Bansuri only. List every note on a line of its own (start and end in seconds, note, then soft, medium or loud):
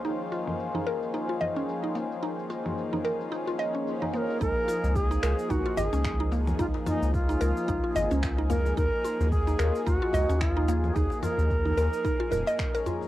4.14 4.39 A#4 medium
4.14 4.18 C5 medium
4.41 4.97 A#4 loud
4.96 5.52 G#4 loud
5.50 5.79 F#4 medium
5.78 6.32 G#4 medium
6.60 6.66 F4 loud
6.87 7.12 D#4 loud
7.14 8.19 F4 loud
8.50 8.75 A#4 loud
8.77 9.28 A#4 loud
9.31 9.82 G#4 loud
9.86 10.42 F#4 loud
10.40 10.51 E4 medium
10.51 10.96 F4 medium
10.94 11.21 G#4 loud
11.22 12.82 A#4 loud